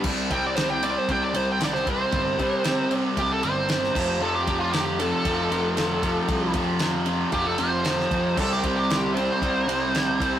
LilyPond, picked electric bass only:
\new Staff \with { instrumentName = "Picked electric bass" } { \clef bass \time 4/4 \key c \mixolydian \tempo 4 = 115 c,2 c,8 c,4. | g,,8 c4. c,8 g,,4 f,,8 | f,,2 f,,8 f,,4. | c,8 f,4. f,,8 f,,4 f,8 |
c,2 c,8 c,4. | }